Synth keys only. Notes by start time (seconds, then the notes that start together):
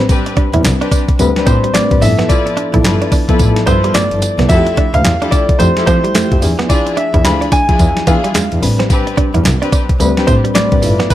Already playing: G3 C4 D4 B4
1.19 G3 C4 D4 B4
1.74 G3 C4 D4 B4
1.91 G3 C4 D4 B4
2.02 F3 B3 E4 A4
2.74 F3 B3 E4 A4
3.29 F3 B3 E4 A4
4.49 F3 A3 E4 F#4
4.57 G4
5.59 F3 A3 E4 G4
6.14 F3 A3 E4 G4
6.31 F3 A3 E4 G4
6.42 F3 D4 E4 G#4
7.14 F3 D4 E4 G#4
7.69 F3 D4 E4 G#4
8.62 G3 C4 D4 B4
10.00 G3 C4 D4 B4
10.55 G3 C4 D4 B4
10.72 G3 C4 D4 B4
10.83 A3 E4 F4 B4